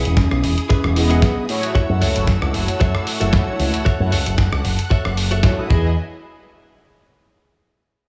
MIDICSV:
0, 0, Header, 1, 9, 480
1, 0, Start_track
1, 0, Tempo, 526316
1, 1599, Time_signature, 4, 2, 24, 8
1, 7372, End_track
2, 0, Start_track
2, 0, Title_t, "String section"
2, 0, Program_c, 0, 48
2, 0, Note_on_c, 0, 64, 70
2, 0, Note_on_c, 0, 68, 76
2, 0, Note_on_c, 0, 87, 86
2, 1562, Note_off_c, 0, 64, 0
2, 1562, Note_off_c, 0, 68, 0
2, 1562, Note_off_c, 0, 87, 0
2, 1597, Note_on_c, 0, 88, 89
2, 1598, Note_on_c, 0, 78, 77
2, 1599, Note_on_c, 0, 69, 77
2, 3499, Note_off_c, 0, 88, 0
2, 3518, Note_on_c, 0, 90, 90
2, 5162, Note_off_c, 0, 78, 0
2, 5163, Note_off_c, 0, 69, 0
2, 5182, Note_off_c, 0, 90, 0
2, 5196, Note_on_c, 0, 64, 73
2, 5197, Note_on_c, 0, 75, 68
2, 5198, Note_on_c, 0, 80, 80
2, 5421, Note_off_c, 0, 64, 0
2, 5421, Note_off_c, 0, 75, 0
2, 5421, Note_off_c, 0, 80, 0
2, 7372, End_track
3, 0, Start_track
3, 0, Title_t, "Clean electric guitar"
3, 0, Program_c, 1, 27
3, 0, Note_on_c, 1, 64, 78
3, 0, Note_on_c, 1, 68, 85
3, 0, Note_on_c, 1, 71, 85
3, 0, Note_on_c, 1, 78, 88
3, 156, Note_off_c, 1, 64, 0
3, 157, Note_off_c, 1, 68, 0
3, 159, Note_off_c, 1, 71, 0
3, 161, Note_off_c, 1, 78, 0
3, 633, Note_on_c, 1, 68, 83
3, 635, Note_on_c, 1, 64, 76
3, 638, Note_on_c, 1, 71, 79
3, 644, Note_on_c, 1, 75, 93
3, 820, Note_off_c, 1, 64, 0
3, 821, Note_off_c, 1, 68, 0
3, 823, Note_off_c, 1, 71, 0
3, 824, Note_off_c, 1, 75, 0
3, 1002, Note_on_c, 1, 64, 88
3, 1005, Note_on_c, 1, 68, 81
3, 1011, Note_on_c, 1, 71, 66
3, 1012, Note_on_c, 1, 78, 94
3, 1300, Note_off_c, 1, 64, 0
3, 1302, Note_off_c, 1, 68, 0
3, 1303, Note_off_c, 1, 71, 0
3, 1305, Note_off_c, 1, 78, 0
3, 1594, Note_on_c, 1, 66, 112
3, 1598, Note_on_c, 1, 73, 109
3, 1600, Note_on_c, 1, 69, 96
3, 1607, Note_on_c, 1, 76, 107
3, 1725, Note_off_c, 1, 66, 0
3, 1726, Note_off_c, 1, 69, 0
3, 1728, Note_off_c, 1, 73, 0
3, 1730, Note_off_c, 1, 76, 0
3, 1833, Note_on_c, 1, 66, 89
3, 1840, Note_on_c, 1, 69, 67
3, 1842, Note_on_c, 1, 73, 85
3, 1845, Note_on_c, 1, 76, 94
3, 2077, Note_off_c, 1, 66, 0
3, 2078, Note_off_c, 1, 69, 0
3, 2080, Note_off_c, 1, 73, 0
3, 2082, Note_off_c, 1, 76, 0
3, 2552, Note_on_c, 1, 66, 91
3, 2558, Note_on_c, 1, 73, 72
3, 2559, Note_on_c, 1, 69, 69
3, 2565, Note_on_c, 1, 76, 88
3, 2740, Note_off_c, 1, 66, 0
3, 2742, Note_off_c, 1, 69, 0
3, 2743, Note_off_c, 1, 73, 0
3, 2745, Note_off_c, 1, 76, 0
3, 2921, Note_on_c, 1, 66, 89
3, 2924, Note_on_c, 1, 69, 83
3, 2932, Note_on_c, 1, 73, 65
3, 2932, Note_on_c, 1, 76, 94
3, 3220, Note_off_c, 1, 66, 0
3, 3222, Note_off_c, 1, 69, 0
3, 3223, Note_off_c, 1, 73, 0
3, 3225, Note_off_c, 1, 76, 0
3, 3512, Note_on_c, 1, 66, 115
3, 3519, Note_on_c, 1, 69, 90
3, 3519, Note_on_c, 1, 73, 105
3, 3523, Note_on_c, 1, 76, 127
3, 3645, Note_off_c, 1, 66, 0
3, 3646, Note_off_c, 1, 69, 0
3, 3648, Note_off_c, 1, 73, 0
3, 3650, Note_off_c, 1, 76, 0
3, 3752, Note_on_c, 1, 66, 93
3, 3760, Note_on_c, 1, 69, 71
3, 3760, Note_on_c, 1, 73, 79
3, 3766, Note_on_c, 1, 76, 83
3, 3996, Note_off_c, 1, 66, 0
3, 3998, Note_off_c, 1, 69, 0
3, 4000, Note_off_c, 1, 73, 0
3, 4001, Note_off_c, 1, 76, 0
3, 4472, Note_on_c, 1, 66, 87
3, 4481, Note_on_c, 1, 69, 67
3, 4481, Note_on_c, 1, 73, 80
3, 4484, Note_on_c, 1, 76, 94
3, 4661, Note_off_c, 1, 66, 0
3, 4662, Note_off_c, 1, 69, 0
3, 4664, Note_off_c, 1, 73, 0
3, 4666, Note_off_c, 1, 76, 0
3, 4843, Note_on_c, 1, 66, 89
3, 4849, Note_on_c, 1, 73, 86
3, 4851, Note_on_c, 1, 69, 80
3, 4857, Note_on_c, 1, 76, 82
3, 5141, Note_off_c, 1, 66, 0
3, 5143, Note_off_c, 1, 69, 0
3, 5144, Note_off_c, 1, 73, 0
3, 5146, Note_off_c, 1, 76, 0
3, 5198, Note_on_c, 1, 64, 85
3, 5202, Note_on_c, 1, 75, 89
3, 5205, Note_on_c, 1, 68, 77
3, 5422, Note_off_c, 1, 64, 0
3, 5422, Note_off_c, 1, 68, 0
3, 5423, Note_off_c, 1, 75, 0
3, 7372, End_track
4, 0, Start_track
4, 0, Title_t, "Analog polysynth"
4, 0, Program_c, 2, 90
4, 873, Note_on_c, 2, 59, 102
4, 876, Note_on_c, 2, 64, 92
4, 878, Note_on_c, 2, 68, 93
4, 882, Note_on_c, 2, 75, 114
4, 1329, Note_off_c, 2, 59, 0
4, 1330, Note_off_c, 2, 64, 0
4, 1332, Note_off_c, 2, 68, 0
4, 1333, Note_off_c, 2, 75, 0
4, 1356, Note_on_c, 2, 57, 93
4, 1360, Note_on_c, 2, 64, 92
4, 1362, Note_on_c, 2, 66, 89
4, 1365, Note_on_c, 2, 73, 108
4, 1695, Note_off_c, 2, 57, 0
4, 1697, Note_off_c, 2, 64, 0
4, 1698, Note_off_c, 2, 66, 0
4, 1699, Note_off_c, 2, 73, 0
4, 1722, Note_on_c, 2, 57, 73
4, 1728, Note_on_c, 2, 64, 67
4, 1733, Note_on_c, 2, 66, 68
4, 1740, Note_on_c, 2, 73, 83
4, 2894, Note_off_c, 2, 57, 0
4, 2897, Note_off_c, 2, 64, 0
4, 2899, Note_off_c, 2, 66, 0
4, 2903, Note_off_c, 2, 73, 0
4, 2919, Note_on_c, 2, 57, 83
4, 2925, Note_on_c, 2, 64, 73
4, 2932, Note_on_c, 2, 66, 71
4, 2938, Note_on_c, 2, 73, 92
4, 3612, Note_off_c, 2, 57, 0
4, 3615, Note_off_c, 2, 64, 0
4, 3619, Note_off_c, 2, 66, 0
4, 3622, Note_off_c, 2, 73, 0
4, 3644, Note_on_c, 2, 57, 99
4, 3646, Note_on_c, 2, 64, 87
4, 3649, Note_on_c, 2, 66, 91
4, 3652, Note_on_c, 2, 73, 105
4, 3741, Note_off_c, 2, 57, 0
4, 3743, Note_off_c, 2, 64, 0
4, 3744, Note_off_c, 2, 66, 0
4, 3746, Note_off_c, 2, 73, 0
4, 4954, Note_on_c, 2, 57, 82
4, 4958, Note_on_c, 2, 64, 73
4, 4960, Note_on_c, 2, 66, 77
4, 4964, Note_on_c, 2, 73, 93
4, 5054, Note_off_c, 2, 57, 0
4, 5056, Note_off_c, 2, 64, 0
4, 5057, Note_off_c, 2, 66, 0
4, 5059, Note_off_c, 2, 73, 0
4, 5082, Note_on_c, 2, 57, 86
4, 5085, Note_on_c, 2, 64, 79
4, 5088, Note_on_c, 2, 66, 78
4, 5091, Note_on_c, 2, 87, 94
4, 5181, Note_off_c, 2, 64, 0
4, 5183, Note_on_c, 2, 59, 90
4, 5192, Note_on_c, 2, 64, 85
4, 5196, Note_off_c, 2, 57, 0
4, 5199, Note_off_c, 2, 66, 0
4, 5200, Note_off_c, 2, 87, 0
4, 5201, Note_on_c, 2, 68, 82
4, 5211, Note_on_c, 2, 75, 103
4, 5372, Note_off_c, 2, 59, 0
4, 5377, Note_off_c, 2, 64, 0
4, 5382, Note_off_c, 2, 68, 0
4, 5387, Note_off_c, 2, 75, 0
4, 7372, End_track
5, 0, Start_track
5, 0, Title_t, "Vibraphone"
5, 0, Program_c, 3, 11
5, 47, Note_on_c, 3, 61, 84
5, 118, Note_off_c, 3, 61, 0
5, 158, Note_on_c, 3, 61, 75
5, 240, Note_off_c, 3, 61, 0
5, 287, Note_on_c, 3, 61, 89
5, 389, Note_off_c, 3, 61, 0
5, 638, Note_on_c, 3, 61, 90
5, 1007, Note_off_c, 3, 61, 0
5, 7372, End_track
6, 0, Start_track
6, 0, Title_t, "Fingered electric bass"
6, 0, Program_c, 4, 33
6, 49, Note_on_c, 4, 28, 81
6, 244, Note_off_c, 4, 28, 0
6, 289, Note_on_c, 4, 35, 95
6, 380, Note_off_c, 4, 35, 0
6, 400, Note_on_c, 4, 28, 85
6, 506, Note_off_c, 4, 28, 0
6, 767, Note_on_c, 4, 28, 97
6, 1088, Note_off_c, 4, 28, 0
6, 1728, Note_on_c, 4, 42, 104
6, 1820, Note_off_c, 4, 42, 0
6, 1840, Note_on_c, 4, 37, 84
6, 1946, Note_off_c, 4, 37, 0
6, 1970, Note_on_c, 4, 30, 89
6, 2165, Note_off_c, 4, 30, 0
6, 2208, Note_on_c, 4, 37, 97
6, 2300, Note_off_c, 4, 37, 0
6, 2321, Note_on_c, 4, 30, 92
6, 2426, Note_off_c, 4, 30, 0
6, 2563, Note_on_c, 4, 42, 95
6, 2667, Note_off_c, 4, 42, 0
6, 2929, Note_on_c, 4, 30, 96
6, 3020, Note_off_c, 4, 30, 0
6, 3279, Note_on_c, 4, 37, 81
6, 3385, Note_off_c, 4, 37, 0
6, 3649, Note_on_c, 4, 42, 104
6, 3740, Note_off_c, 4, 42, 0
6, 3759, Note_on_c, 4, 37, 84
6, 3865, Note_off_c, 4, 37, 0
6, 3887, Note_on_c, 4, 30, 90
6, 4083, Note_off_c, 4, 30, 0
6, 4127, Note_on_c, 4, 37, 91
6, 4219, Note_off_c, 4, 37, 0
6, 4237, Note_on_c, 4, 30, 89
6, 4345, Note_off_c, 4, 30, 0
6, 4607, Note_on_c, 4, 30, 92
6, 4928, Note_off_c, 4, 30, 0
6, 5202, Note_on_c, 4, 40, 100
6, 5424, Note_off_c, 4, 40, 0
6, 7372, End_track
7, 0, Start_track
7, 0, Title_t, "Muted clean electric guitar strokes"
7, 394, Note_on_c, 9, 29, 33
7, 485, Note_off_c, 9, 29, 0
7, 2313, Note_on_c, 9, 29, 33
7, 2404, Note_off_c, 9, 29, 0
7, 4236, Note_on_c, 9, 29, 34
7, 4327, Note_off_c, 9, 29, 0
7, 7372, End_track
8, 0, Start_track
8, 0, Title_t, "Muted fingered electric bass strokes"
8, 1599, Note_on_c, 9, 29, 45
8, 1691, Note_off_c, 9, 29, 0
8, 3522, Note_on_c, 9, 29, 46
8, 3613, Note_off_c, 9, 29, 0
8, 7372, End_track
9, 0, Start_track
9, 0, Title_t, "Drums"
9, 48, Note_on_c, 9, 42, 68
9, 139, Note_off_c, 9, 42, 0
9, 153, Note_on_c, 9, 38, 110
9, 156, Note_on_c, 9, 36, 105
9, 158, Note_on_c, 9, 42, 54
9, 245, Note_off_c, 9, 38, 0
9, 248, Note_off_c, 9, 36, 0
9, 249, Note_off_c, 9, 42, 0
9, 286, Note_on_c, 9, 37, 82
9, 378, Note_off_c, 9, 37, 0
9, 398, Note_on_c, 9, 46, 91
9, 489, Note_off_c, 9, 46, 0
9, 527, Note_on_c, 9, 42, 61
9, 618, Note_off_c, 9, 42, 0
9, 639, Note_on_c, 9, 42, 55
9, 643, Note_on_c, 9, 36, 124
9, 730, Note_off_c, 9, 42, 0
9, 734, Note_off_c, 9, 36, 0
9, 768, Note_on_c, 9, 37, 85
9, 859, Note_off_c, 9, 37, 0
9, 879, Note_on_c, 9, 46, 108
9, 970, Note_off_c, 9, 46, 0
9, 1008, Note_on_c, 9, 42, 67
9, 1099, Note_off_c, 9, 42, 0
9, 1115, Note_on_c, 9, 38, 123
9, 1116, Note_on_c, 9, 36, 109
9, 1120, Note_on_c, 9, 42, 57
9, 1206, Note_off_c, 9, 38, 0
9, 1207, Note_off_c, 9, 36, 0
9, 1211, Note_off_c, 9, 42, 0
9, 1358, Note_on_c, 9, 46, 94
9, 1450, Note_off_c, 9, 46, 0
9, 1489, Note_on_c, 9, 42, 66
9, 1580, Note_off_c, 9, 42, 0
9, 1599, Note_on_c, 9, 42, 56
9, 1600, Note_on_c, 9, 36, 103
9, 1690, Note_off_c, 9, 42, 0
9, 1691, Note_off_c, 9, 36, 0
9, 1839, Note_on_c, 9, 46, 102
9, 1930, Note_off_c, 9, 46, 0
9, 1968, Note_on_c, 9, 42, 75
9, 2059, Note_off_c, 9, 42, 0
9, 2074, Note_on_c, 9, 36, 108
9, 2075, Note_on_c, 9, 38, 121
9, 2080, Note_on_c, 9, 42, 53
9, 2165, Note_off_c, 9, 36, 0
9, 2166, Note_off_c, 9, 38, 0
9, 2171, Note_off_c, 9, 42, 0
9, 2208, Note_on_c, 9, 37, 86
9, 2299, Note_off_c, 9, 37, 0
9, 2318, Note_on_c, 9, 46, 91
9, 2409, Note_off_c, 9, 46, 0
9, 2447, Note_on_c, 9, 42, 62
9, 2538, Note_off_c, 9, 42, 0
9, 2558, Note_on_c, 9, 42, 56
9, 2563, Note_on_c, 9, 36, 127
9, 2649, Note_off_c, 9, 42, 0
9, 2655, Note_off_c, 9, 36, 0
9, 2687, Note_on_c, 9, 37, 88
9, 2778, Note_off_c, 9, 37, 0
9, 2799, Note_on_c, 9, 46, 109
9, 2890, Note_off_c, 9, 46, 0
9, 2928, Note_on_c, 9, 42, 73
9, 3019, Note_off_c, 9, 42, 0
9, 3035, Note_on_c, 9, 38, 124
9, 3040, Note_on_c, 9, 42, 57
9, 3042, Note_on_c, 9, 36, 108
9, 3126, Note_off_c, 9, 38, 0
9, 3131, Note_off_c, 9, 42, 0
9, 3133, Note_off_c, 9, 36, 0
9, 3280, Note_on_c, 9, 46, 91
9, 3371, Note_off_c, 9, 46, 0
9, 3409, Note_on_c, 9, 42, 69
9, 3500, Note_off_c, 9, 42, 0
9, 3520, Note_on_c, 9, 42, 57
9, 3522, Note_on_c, 9, 36, 119
9, 3612, Note_off_c, 9, 42, 0
9, 3614, Note_off_c, 9, 36, 0
9, 3760, Note_on_c, 9, 46, 111
9, 3851, Note_off_c, 9, 46, 0
9, 3888, Note_on_c, 9, 42, 75
9, 3980, Note_off_c, 9, 42, 0
9, 3994, Note_on_c, 9, 38, 127
9, 3999, Note_on_c, 9, 36, 105
9, 3999, Note_on_c, 9, 42, 58
9, 4086, Note_off_c, 9, 38, 0
9, 4090, Note_off_c, 9, 36, 0
9, 4091, Note_off_c, 9, 42, 0
9, 4127, Note_on_c, 9, 37, 86
9, 4219, Note_off_c, 9, 37, 0
9, 4238, Note_on_c, 9, 46, 93
9, 4329, Note_off_c, 9, 46, 0
9, 4367, Note_on_c, 9, 42, 67
9, 4458, Note_off_c, 9, 42, 0
9, 4478, Note_on_c, 9, 42, 54
9, 4479, Note_on_c, 9, 36, 113
9, 4570, Note_off_c, 9, 36, 0
9, 4570, Note_off_c, 9, 42, 0
9, 4607, Note_on_c, 9, 37, 90
9, 4698, Note_off_c, 9, 37, 0
9, 4719, Note_on_c, 9, 46, 107
9, 4810, Note_off_c, 9, 46, 0
9, 4846, Note_on_c, 9, 42, 73
9, 4937, Note_off_c, 9, 42, 0
9, 4953, Note_on_c, 9, 38, 127
9, 4958, Note_on_c, 9, 42, 59
9, 4962, Note_on_c, 9, 36, 100
9, 5045, Note_off_c, 9, 38, 0
9, 5050, Note_off_c, 9, 42, 0
9, 5054, Note_off_c, 9, 36, 0
9, 5203, Note_on_c, 9, 36, 121
9, 5294, Note_off_c, 9, 36, 0
9, 7372, End_track
0, 0, End_of_file